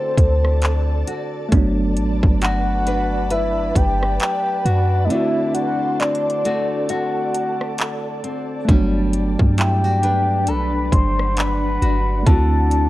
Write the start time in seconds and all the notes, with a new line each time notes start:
Already playing: D3 A3 C4 E4 F#4 A4 C5 D5 A5
0.18 D2, kick, closed hi-hat
0.45 cross-stick
0.62 clap, closed hi-hat
1.07 F#4, closed hi-hat
1.49 G1 A3 B3 B4 B5, kick, closed hi-hat
1.54 F#3 D4
1.96 A1, closed hi-hat
2.23 G1, kick
2.41 F#4 F#5, clap, closed hi-hat
2.86 D4 B4, closed hi-hat
3.30 B4 E5, closed hi-hat
3.76 G1 G5, kick, closed hi-hat
4.03 cross-stick
4.20 G5, clap, closed hi-hat
4.65 F#2 F#4 F#5, closed hi-hat
5.05 A3 D#5
5.09 D3 C4 E4 A4 E5 C6, closed hi-hat
5.15 F#4
5.55 F#5, closed hi-hat
6.00 C4 D5, clap, closed hi-hat
6.15 closed hi-hat
6.30 closed hi-hat
6.45 A3 C4 F#4, closed hi-hat
6.89 F#4 F#5, closed hi-hat
7.34 closed hi-hat
7.61 cross-stick
7.78 clap, closed hi-hat
8.24 C4, closed hi-hat
8.65 G1 G3 A3 B3 D4, kick, closed hi-hat
8.70 F#3 D4
9.13 closed hi-hat
9.39 G2, kick
9.58 E4 G5, clap, closed hi-hat
9.84 F#4
10.03 D4 B4, closed hi-hat
10.47 B1 A4 F#5 B5, closed hi-hat
10.92 G1 C6, kick, closed hi-hat
11.19 cross-stick
11.37 B5, clap, closed hi-hat
11.82 G1 F#4, closed hi-hat
12.23 D2 D3 A3 C4 A4 F#5 A5 C6, kick, closed hi-hat
12.28 E4 F#4
12.71 closed hi-hat